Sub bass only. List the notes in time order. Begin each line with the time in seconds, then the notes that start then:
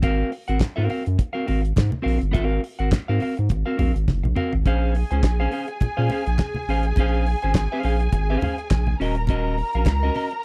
Already playing: G#1
0.49 G#1
0.60 G#2
0.78 G#2
1.07 F#2
1.49 G#1
1.77 G#2
2.06 A#1
2.22 G1
2.35 G#1
2.80 G#1
2.92 G#2
3.09 G#2
3.39 G#2
3.50 G#1
3.80 A#1
3.95 G#1
4.08 F#1
4.23 A#1
4.53 G#1
4.66 A#1
5.11 C#2
5.23 A#1
5.81 A#2
5.98 A#2
6.27 A#1
6.68 A1
6.97 A#1
7.44 G#1
7.84 A#1
8.13 G#1
8.71 A#1
9.00 D#1
9.75 A#1
9.86 C#2